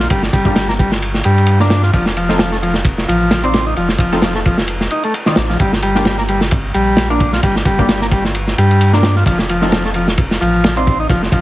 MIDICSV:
0, 0, Header, 1, 5, 480
1, 0, Start_track
1, 0, Key_signature, -2, "minor"
1, 0, Tempo, 458015
1, 109, Time_signature, 4, 2, 24, 8
1, 11959, End_track
2, 0, Start_track
2, 0, Title_t, "Synth stab"
2, 0, Program_c, 0, 62
2, 481, Note_on_c, 0, 58, 84
2, 481, Note_on_c, 0, 65, 73
2, 482, Note_on_c, 0, 62, 75
2, 482, Note_on_c, 0, 67, 90
2, 592, Note_off_c, 0, 58, 0
2, 592, Note_off_c, 0, 62, 0
2, 592, Note_off_c, 0, 65, 0
2, 592, Note_off_c, 0, 67, 0
2, 1681, Note_on_c, 0, 62, 69
2, 1681, Note_on_c, 0, 65, 72
2, 1681, Note_on_c, 0, 70, 85
2, 1682, Note_on_c, 0, 58, 76
2, 1792, Note_off_c, 0, 58, 0
2, 1792, Note_off_c, 0, 62, 0
2, 1792, Note_off_c, 0, 65, 0
2, 1792, Note_off_c, 0, 70, 0
2, 2401, Note_on_c, 0, 60, 82
2, 2401, Note_on_c, 0, 69, 88
2, 2402, Note_on_c, 0, 63, 79
2, 2402, Note_on_c, 0, 65, 77
2, 2511, Note_off_c, 0, 60, 0
2, 2512, Note_off_c, 0, 63, 0
2, 2512, Note_off_c, 0, 65, 0
2, 2512, Note_off_c, 0, 69, 0
2, 3601, Note_on_c, 0, 60, 79
2, 3602, Note_on_c, 0, 63, 70
2, 3602, Note_on_c, 0, 65, 66
2, 3602, Note_on_c, 0, 74, 83
2, 3712, Note_off_c, 0, 60, 0
2, 3712, Note_off_c, 0, 63, 0
2, 3712, Note_off_c, 0, 65, 0
2, 3712, Note_off_c, 0, 74, 0
2, 4322, Note_on_c, 0, 69, 90
2, 4323, Note_on_c, 0, 60, 84
2, 4323, Note_on_c, 0, 63, 77
2, 4323, Note_on_c, 0, 65, 75
2, 4432, Note_off_c, 0, 69, 0
2, 4433, Note_off_c, 0, 60, 0
2, 4433, Note_off_c, 0, 63, 0
2, 4433, Note_off_c, 0, 65, 0
2, 5523, Note_on_c, 0, 63, 68
2, 5523, Note_on_c, 0, 65, 70
2, 5524, Note_on_c, 0, 60, 76
2, 5524, Note_on_c, 0, 74, 84
2, 5633, Note_off_c, 0, 60, 0
2, 5633, Note_off_c, 0, 63, 0
2, 5633, Note_off_c, 0, 65, 0
2, 5633, Note_off_c, 0, 74, 0
2, 6243, Note_on_c, 0, 58, 82
2, 6243, Note_on_c, 0, 62, 76
2, 6243, Note_on_c, 0, 65, 76
2, 6244, Note_on_c, 0, 67, 88
2, 6353, Note_off_c, 0, 58, 0
2, 6353, Note_off_c, 0, 62, 0
2, 6353, Note_off_c, 0, 65, 0
2, 6353, Note_off_c, 0, 67, 0
2, 7443, Note_on_c, 0, 62, 67
2, 7443, Note_on_c, 0, 65, 68
2, 7443, Note_on_c, 0, 70, 85
2, 7444, Note_on_c, 0, 58, 74
2, 7552, Note_off_c, 0, 62, 0
2, 7552, Note_off_c, 0, 65, 0
2, 7553, Note_off_c, 0, 58, 0
2, 7553, Note_off_c, 0, 70, 0
2, 8163, Note_on_c, 0, 65, 78
2, 8164, Note_on_c, 0, 58, 84
2, 8164, Note_on_c, 0, 62, 77
2, 8165, Note_on_c, 0, 67, 91
2, 8273, Note_off_c, 0, 58, 0
2, 8273, Note_off_c, 0, 62, 0
2, 8273, Note_off_c, 0, 65, 0
2, 8273, Note_off_c, 0, 67, 0
2, 9364, Note_on_c, 0, 58, 78
2, 9364, Note_on_c, 0, 62, 71
2, 9364, Note_on_c, 0, 65, 70
2, 9364, Note_on_c, 0, 70, 86
2, 9473, Note_off_c, 0, 58, 0
2, 9473, Note_off_c, 0, 62, 0
2, 9473, Note_off_c, 0, 65, 0
2, 9473, Note_off_c, 0, 70, 0
2, 10084, Note_on_c, 0, 60, 85
2, 10084, Note_on_c, 0, 65, 78
2, 10085, Note_on_c, 0, 63, 78
2, 10085, Note_on_c, 0, 69, 91
2, 10193, Note_off_c, 0, 60, 0
2, 10193, Note_off_c, 0, 65, 0
2, 10194, Note_off_c, 0, 63, 0
2, 10194, Note_off_c, 0, 69, 0
2, 11282, Note_on_c, 0, 60, 76
2, 11282, Note_on_c, 0, 74, 85
2, 11283, Note_on_c, 0, 63, 73
2, 11283, Note_on_c, 0, 65, 68
2, 11392, Note_off_c, 0, 60, 0
2, 11392, Note_off_c, 0, 74, 0
2, 11393, Note_off_c, 0, 63, 0
2, 11393, Note_off_c, 0, 65, 0
2, 11959, End_track
3, 0, Start_track
3, 0, Title_t, "Transistor combo organ"
3, 0, Program_c, 1, 18
3, 3, Note_on_c, 1, 65, 72
3, 83, Note_off_c, 1, 65, 0
3, 110, Note_on_c, 1, 55, 80
3, 235, Note_off_c, 1, 55, 0
3, 348, Note_on_c, 1, 55, 74
3, 707, Note_off_c, 1, 55, 0
3, 721, Note_on_c, 1, 58, 99
3, 770, Note_off_c, 1, 58, 0
3, 830, Note_on_c, 1, 55, 72
3, 955, Note_off_c, 1, 55, 0
3, 1311, Note_on_c, 1, 55, 104
3, 1669, Note_off_c, 1, 55, 0
3, 1686, Note_on_c, 1, 62, 73
3, 1910, Note_off_c, 1, 62, 0
3, 1922, Note_on_c, 1, 65, 71
3, 2003, Note_off_c, 1, 65, 0
3, 2033, Note_on_c, 1, 53, 82
3, 2157, Note_off_c, 1, 53, 0
3, 2274, Note_on_c, 1, 53, 75
3, 2630, Note_off_c, 1, 53, 0
3, 2644, Note_on_c, 1, 57, 98
3, 2691, Note_off_c, 1, 57, 0
3, 2751, Note_on_c, 1, 53, 77
3, 2876, Note_off_c, 1, 53, 0
3, 3231, Note_on_c, 1, 53, 103
3, 3589, Note_off_c, 1, 53, 0
3, 3601, Note_on_c, 1, 60, 75
3, 3828, Note_off_c, 1, 60, 0
3, 3842, Note_on_c, 1, 63, 75
3, 3923, Note_off_c, 1, 63, 0
3, 3951, Note_on_c, 1, 53, 84
3, 4076, Note_off_c, 1, 53, 0
3, 4188, Note_on_c, 1, 53, 76
3, 4548, Note_off_c, 1, 53, 0
3, 4562, Note_on_c, 1, 57, 99
3, 4610, Note_off_c, 1, 57, 0
3, 4670, Note_on_c, 1, 53, 74
3, 4795, Note_off_c, 1, 53, 0
3, 5150, Note_on_c, 1, 63, 78
3, 5275, Note_off_c, 1, 63, 0
3, 5285, Note_on_c, 1, 57, 75
3, 5385, Note_off_c, 1, 57, 0
3, 5521, Note_on_c, 1, 51, 99
3, 5618, Note_off_c, 1, 51, 0
3, 5761, Note_on_c, 1, 53, 73
3, 5842, Note_off_c, 1, 53, 0
3, 5869, Note_on_c, 1, 55, 81
3, 5995, Note_off_c, 1, 55, 0
3, 6107, Note_on_c, 1, 55, 76
3, 6467, Note_off_c, 1, 55, 0
3, 6481, Note_on_c, 1, 58, 94
3, 6529, Note_off_c, 1, 58, 0
3, 6591, Note_on_c, 1, 55, 75
3, 6715, Note_off_c, 1, 55, 0
3, 7067, Note_on_c, 1, 55, 105
3, 7427, Note_off_c, 1, 55, 0
3, 7444, Note_on_c, 1, 62, 72
3, 7669, Note_off_c, 1, 62, 0
3, 7685, Note_on_c, 1, 65, 74
3, 7764, Note_off_c, 1, 65, 0
3, 7790, Note_on_c, 1, 55, 83
3, 7915, Note_off_c, 1, 55, 0
3, 8031, Note_on_c, 1, 55, 78
3, 8389, Note_off_c, 1, 55, 0
3, 8404, Note_on_c, 1, 58, 97
3, 8451, Note_off_c, 1, 58, 0
3, 8512, Note_on_c, 1, 55, 77
3, 8636, Note_off_c, 1, 55, 0
3, 8995, Note_on_c, 1, 55, 101
3, 9351, Note_off_c, 1, 55, 0
3, 9367, Note_on_c, 1, 62, 74
3, 9591, Note_off_c, 1, 62, 0
3, 9606, Note_on_c, 1, 65, 74
3, 9685, Note_off_c, 1, 65, 0
3, 9713, Note_on_c, 1, 53, 85
3, 9836, Note_off_c, 1, 53, 0
3, 9953, Note_on_c, 1, 53, 76
3, 10310, Note_off_c, 1, 53, 0
3, 10324, Note_on_c, 1, 57, 98
3, 10371, Note_off_c, 1, 57, 0
3, 10433, Note_on_c, 1, 53, 72
3, 10557, Note_off_c, 1, 53, 0
3, 10910, Note_on_c, 1, 53, 108
3, 11269, Note_off_c, 1, 53, 0
3, 11287, Note_on_c, 1, 60, 73
3, 11511, Note_off_c, 1, 60, 0
3, 11526, Note_on_c, 1, 63, 76
3, 11605, Note_off_c, 1, 63, 0
3, 11635, Note_on_c, 1, 53, 84
3, 11758, Note_off_c, 1, 53, 0
3, 11874, Note_on_c, 1, 53, 77
3, 11959, Note_off_c, 1, 53, 0
3, 11959, End_track
4, 0, Start_track
4, 0, Title_t, "Sub bass"
4, 0, Program_c, 2, 38
4, 110, Note_on_c, 2, 31, 96
4, 309, Note_off_c, 2, 31, 0
4, 348, Note_on_c, 2, 31, 87
4, 1276, Note_off_c, 2, 31, 0
4, 1310, Note_on_c, 2, 43, 82
4, 1997, Note_off_c, 2, 43, 0
4, 2028, Note_on_c, 2, 29, 99
4, 3196, Note_off_c, 2, 29, 0
4, 3228, Note_on_c, 2, 33, 83
4, 3916, Note_off_c, 2, 33, 0
4, 3948, Note_on_c, 2, 29, 93
4, 4148, Note_off_c, 2, 29, 0
4, 4175, Note_on_c, 2, 29, 88
4, 5110, Note_off_c, 2, 29, 0
4, 5628, Note_on_c, 2, 33, 96
4, 5828, Note_off_c, 2, 33, 0
4, 5868, Note_on_c, 2, 31, 94
4, 7036, Note_off_c, 2, 31, 0
4, 7069, Note_on_c, 2, 34, 84
4, 7756, Note_off_c, 2, 34, 0
4, 7787, Note_on_c, 2, 31, 96
4, 7988, Note_off_c, 2, 31, 0
4, 8022, Note_on_c, 2, 31, 86
4, 8953, Note_off_c, 2, 31, 0
4, 8988, Note_on_c, 2, 43, 86
4, 9676, Note_off_c, 2, 43, 0
4, 9705, Note_on_c, 2, 29, 93
4, 10874, Note_off_c, 2, 29, 0
4, 10913, Note_on_c, 2, 33, 87
4, 11598, Note_off_c, 2, 33, 0
4, 11627, Note_on_c, 2, 29, 100
4, 11828, Note_off_c, 2, 29, 0
4, 11863, Note_on_c, 2, 29, 90
4, 11959, Note_off_c, 2, 29, 0
4, 11959, End_track
5, 0, Start_track
5, 0, Title_t, "Drums"
5, 105, Note_on_c, 9, 51, 91
5, 110, Note_on_c, 9, 36, 98
5, 209, Note_off_c, 9, 51, 0
5, 215, Note_off_c, 9, 36, 0
5, 237, Note_on_c, 9, 38, 44
5, 342, Note_off_c, 9, 38, 0
5, 347, Note_on_c, 9, 36, 89
5, 348, Note_on_c, 9, 51, 66
5, 452, Note_off_c, 9, 36, 0
5, 453, Note_off_c, 9, 51, 0
5, 474, Note_on_c, 9, 36, 87
5, 579, Note_off_c, 9, 36, 0
5, 585, Note_on_c, 9, 38, 113
5, 588, Note_on_c, 9, 51, 87
5, 689, Note_off_c, 9, 38, 0
5, 693, Note_off_c, 9, 51, 0
5, 723, Note_on_c, 9, 38, 46
5, 828, Note_off_c, 9, 38, 0
5, 832, Note_on_c, 9, 36, 97
5, 835, Note_on_c, 9, 51, 71
5, 937, Note_off_c, 9, 36, 0
5, 940, Note_off_c, 9, 51, 0
5, 960, Note_on_c, 9, 38, 53
5, 1065, Note_off_c, 9, 38, 0
5, 1072, Note_on_c, 9, 51, 78
5, 1177, Note_off_c, 9, 51, 0
5, 1197, Note_on_c, 9, 38, 38
5, 1297, Note_on_c, 9, 51, 70
5, 1302, Note_off_c, 9, 38, 0
5, 1402, Note_off_c, 9, 51, 0
5, 1443, Note_on_c, 9, 51, 42
5, 1536, Note_off_c, 9, 51, 0
5, 1536, Note_on_c, 9, 51, 89
5, 1641, Note_off_c, 9, 51, 0
5, 1676, Note_on_c, 9, 38, 48
5, 1781, Note_off_c, 9, 38, 0
5, 1784, Note_on_c, 9, 38, 109
5, 1791, Note_on_c, 9, 51, 73
5, 1889, Note_off_c, 9, 38, 0
5, 1895, Note_off_c, 9, 51, 0
5, 1911, Note_on_c, 9, 38, 41
5, 2016, Note_off_c, 9, 38, 0
5, 2027, Note_on_c, 9, 51, 85
5, 2028, Note_on_c, 9, 36, 106
5, 2132, Note_off_c, 9, 51, 0
5, 2133, Note_off_c, 9, 36, 0
5, 2158, Note_on_c, 9, 38, 52
5, 2263, Note_off_c, 9, 38, 0
5, 2270, Note_on_c, 9, 51, 64
5, 2375, Note_off_c, 9, 51, 0
5, 2400, Note_on_c, 9, 38, 43
5, 2505, Note_off_c, 9, 38, 0
5, 2506, Note_on_c, 9, 38, 118
5, 2510, Note_on_c, 9, 51, 92
5, 2611, Note_off_c, 9, 38, 0
5, 2615, Note_off_c, 9, 51, 0
5, 2641, Note_on_c, 9, 38, 36
5, 2746, Note_off_c, 9, 38, 0
5, 2755, Note_on_c, 9, 51, 71
5, 2860, Note_off_c, 9, 51, 0
5, 2871, Note_on_c, 9, 38, 50
5, 2976, Note_off_c, 9, 38, 0
5, 2983, Note_on_c, 9, 36, 101
5, 2985, Note_on_c, 9, 51, 90
5, 3088, Note_off_c, 9, 36, 0
5, 3090, Note_off_c, 9, 51, 0
5, 3124, Note_on_c, 9, 38, 43
5, 3229, Note_off_c, 9, 38, 0
5, 3239, Note_on_c, 9, 51, 69
5, 3344, Note_off_c, 9, 51, 0
5, 3467, Note_on_c, 9, 38, 109
5, 3471, Note_on_c, 9, 51, 89
5, 3572, Note_off_c, 9, 38, 0
5, 3576, Note_off_c, 9, 51, 0
5, 3598, Note_on_c, 9, 51, 42
5, 3703, Note_off_c, 9, 51, 0
5, 3705, Note_on_c, 9, 51, 75
5, 3713, Note_on_c, 9, 38, 97
5, 3810, Note_off_c, 9, 51, 0
5, 3817, Note_off_c, 9, 38, 0
5, 3944, Note_on_c, 9, 51, 62
5, 4049, Note_off_c, 9, 51, 0
5, 4074, Note_on_c, 9, 38, 51
5, 4177, Note_on_c, 9, 36, 92
5, 4178, Note_off_c, 9, 38, 0
5, 4191, Note_on_c, 9, 51, 75
5, 4281, Note_off_c, 9, 36, 0
5, 4296, Note_off_c, 9, 51, 0
5, 4323, Note_on_c, 9, 38, 35
5, 4424, Note_off_c, 9, 38, 0
5, 4424, Note_on_c, 9, 38, 119
5, 4428, Note_on_c, 9, 51, 89
5, 4529, Note_off_c, 9, 38, 0
5, 4532, Note_off_c, 9, 51, 0
5, 4556, Note_on_c, 9, 38, 45
5, 4661, Note_off_c, 9, 38, 0
5, 4669, Note_on_c, 9, 51, 71
5, 4672, Note_on_c, 9, 36, 99
5, 4773, Note_off_c, 9, 51, 0
5, 4777, Note_off_c, 9, 36, 0
5, 4797, Note_on_c, 9, 38, 55
5, 4900, Note_on_c, 9, 51, 84
5, 4901, Note_off_c, 9, 38, 0
5, 5005, Note_off_c, 9, 51, 0
5, 5037, Note_on_c, 9, 38, 38
5, 5140, Note_on_c, 9, 51, 62
5, 5142, Note_off_c, 9, 38, 0
5, 5245, Note_off_c, 9, 51, 0
5, 5275, Note_on_c, 9, 51, 48
5, 5380, Note_off_c, 9, 51, 0
5, 5387, Note_on_c, 9, 51, 78
5, 5492, Note_off_c, 9, 51, 0
5, 5514, Note_on_c, 9, 38, 50
5, 5617, Note_off_c, 9, 38, 0
5, 5617, Note_on_c, 9, 38, 115
5, 5626, Note_on_c, 9, 51, 68
5, 5721, Note_off_c, 9, 38, 0
5, 5731, Note_off_c, 9, 51, 0
5, 5761, Note_on_c, 9, 38, 36
5, 5863, Note_on_c, 9, 51, 85
5, 5866, Note_off_c, 9, 38, 0
5, 5868, Note_on_c, 9, 36, 103
5, 5968, Note_off_c, 9, 51, 0
5, 5973, Note_off_c, 9, 36, 0
5, 6003, Note_on_c, 9, 38, 53
5, 6103, Note_on_c, 9, 51, 72
5, 6108, Note_off_c, 9, 38, 0
5, 6208, Note_off_c, 9, 51, 0
5, 6239, Note_on_c, 9, 38, 46
5, 6341, Note_on_c, 9, 51, 84
5, 6343, Note_off_c, 9, 38, 0
5, 6347, Note_on_c, 9, 38, 114
5, 6446, Note_off_c, 9, 51, 0
5, 6451, Note_off_c, 9, 38, 0
5, 6478, Note_on_c, 9, 38, 40
5, 6582, Note_off_c, 9, 38, 0
5, 6586, Note_on_c, 9, 51, 66
5, 6691, Note_off_c, 9, 51, 0
5, 6717, Note_on_c, 9, 38, 57
5, 6822, Note_off_c, 9, 38, 0
5, 6823, Note_on_c, 9, 51, 90
5, 6832, Note_on_c, 9, 36, 112
5, 6928, Note_off_c, 9, 51, 0
5, 6937, Note_off_c, 9, 36, 0
5, 7066, Note_on_c, 9, 51, 66
5, 7171, Note_off_c, 9, 51, 0
5, 7302, Note_on_c, 9, 38, 113
5, 7315, Note_on_c, 9, 51, 91
5, 7406, Note_off_c, 9, 38, 0
5, 7419, Note_off_c, 9, 51, 0
5, 7443, Note_on_c, 9, 51, 46
5, 7548, Note_off_c, 9, 51, 0
5, 7549, Note_on_c, 9, 36, 97
5, 7550, Note_on_c, 9, 51, 71
5, 7654, Note_off_c, 9, 36, 0
5, 7655, Note_off_c, 9, 51, 0
5, 7680, Note_on_c, 9, 38, 50
5, 7784, Note_off_c, 9, 38, 0
5, 7785, Note_on_c, 9, 51, 88
5, 7787, Note_on_c, 9, 36, 105
5, 7890, Note_off_c, 9, 51, 0
5, 7892, Note_off_c, 9, 36, 0
5, 7923, Note_on_c, 9, 38, 47
5, 8022, Note_on_c, 9, 36, 86
5, 8022, Note_on_c, 9, 51, 61
5, 8028, Note_off_c, 9, 38, 0
5, 8127, Note_off_c, 9, 36, 0
5, 8127, Note_off_c, 9, 51, 0
5, 8162, Note_on_c, 9, 36, 90
5, 8266, Note_on_c, 9, 38, 110
5, 8267, Note_off_c, 9, 36, 0
5, 8268, Note_on_c, 9, 51, 89
5, 8371, Note_off_c, 9, 38, 0
5, 8372, Note_off_c, 9, 51, 0
5, 8398, Note_on_c, 9, 38, 44
5, 8502, Note_off_c, 9, 38, 0
5, 8505, Note_on_c, 9, 36, 91
5, 8506, Note_on_c, 9, 51, 74
5, 8609, Note_off_c, 9, 36, 0
5, 8611, Note_off_c, 9, 51, 0
5, 8642, Note_on_c, 9, 38, 47
5, 8746, Note_on_c, 9, 51, 84
5, 8747, Note_off_c, 9, 38, 0
5, 8851, Note_off_c, 9, 51, 0
5, 8881, Note_on_c, 9, 38, 37
5, 8986, Note_off_c, 9, 38, 0
5, 8993, Note_on_c, 9, 51, 70
5, 9098, Note_off_c, 9, 51, 0
5, 9126, Note_on_c, 9, 51, 46
5, 9231, Note_off_c, 9, 51, 0
5, 9231, Note_on_c, 9, 51, 85
5, 9335, Note_off_c, 9, 51, 0
5, 9361, Note_on_c, 9, 38, 48
5, 9463, Note_on_c, 9, 51, 66
5, 9464, Note_off_c, 9, 38, 0
5, 9464, Note_on_c, 9, 38, 114
5, 9568, Note_off_c, 9, 51, 0
5, 9569, Note_off_c, 9, 38, 0
5, 9597, Note_on_c, 9, 38, 37
5, 9702, Note_off_c, 9, 38, 0
5, 9705, Note_on_c, 9, 36, 113
5, 9714, Note_on_c, 9, 51, 89
5, 9810, Note_off_c, 9, 36, 0
5, 9819, Note_off_c, 9, 51, 0
5, 9839, Note_on_c, 9, 38, 53
5, 9943, Note_off_c, 9, 38, 0
5, 9949, Note_on_c, 9, 51, 67
5, 10054, Note_off_c, 9, 51, 0
5, 10079, Note_on_c, 9, 38, 44
5, 10184, Note_off_c, 9, 38, 0
5, 10185, Note_on_c, 9, 51, 81
5, 10191, Note_on_c, 9, 38, 115
5, 10290, Note_off_c, 9, 51, 0
5, 10296, Note_off_c, 9, 38, 0
5, 10323, Note_on_c, 9, 38, 41
5, 10418, Note_on_c, 9, 51, 71
5, 10428, Note_off_c, 9, 38, 0
5, 10523, Note_off_c, 9, 51, 0
5, 10560, Note_on_c, 9, 38, 53
5, 10665, Note_off_c, 9, 38, 0
5, 10665, Note_on_c, 9, 51, 90
5, 10668, Note_on_c, 9, 36, 112
5, 10769, Note_off_c, 9, 51, 0
5, 10773, Note_off_c, 9, 36, 0
5, 10806, Note_on_c, 9, 38, 48
5, 10911, Note_off_c, 9, 38, 0
5, 10920, Note_on_c, 9, 51, 65
5, 11025, Note_off_c, 9, 51, 0
5, 11149, Note_on_c, 9, 51, 85
5, 11155, Note_on_c, 9, 38, 125
5, 11254, Note_off_c, 9, 51, 0
5, 11260, Note_off_c, 9, 38, 0
5, 11286, Note_on_c, 9, 51, 45
5, 11391, Note_off_c, 9, 51, 0
5, 11392, Note_on_c, 9, 51, 62
5, 11394, Note_on_c, 9, 36, 105
5, 11497, Note_off_c, 9, 51, 0
5, 11499, Note_off_c, 9, 36, 0
5, 11628, Note_on_c, 9, 36, 118
5, 11635, Note_on_c, 9, 51, 85
5, 11733, Note_off_c, 9, 36, 0
5, 11740, Note_off_c, 9, 51, 0
5, 11766, Note_on_c, 9, 38, 40
5, 11863, Note_on_c, 9, 36, 103
5, 11866, Note_on_c, 9, 51, 72
5, 11871, Note_off_c, 9, 38, 0
5, 11959, Note_off_c, 9, 36, 0
5, 11959, Note_off_c, 9, 51, 0
5, 11959, End_track
0, 0, End_of_file